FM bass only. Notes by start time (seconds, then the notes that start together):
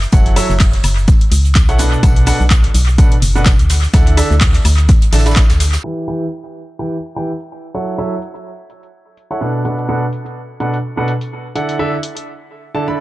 0.13 F#1
0.50 F#1
0.84 F#1
1.32 C#2
1.69 B1
2.03 B1
2.40 B1
2.75 B1
3.22 F#1
3.59 D2
3.94 D2
4.31 D2
4.65 D2
5.13 A1
5.50 D2